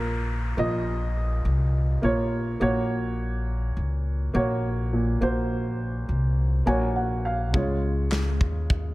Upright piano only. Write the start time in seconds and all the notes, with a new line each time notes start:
Already playing: A#2 F3 A#3 F4 A#4 C#5
0.57 A#2 F3 A#3 F4 D#5
2.02 A#3 F4 C#5
2.60 A#2 A#3 F#4 C#5
4.34 A#3 F#4 C#5
4.93 A#2
5.21 A#3 F#4 C5
6.66 A#3 F#4 C#5 G#5
6.96 F#5
7.25 F5
7.53 C#3 G#3 F4 C#5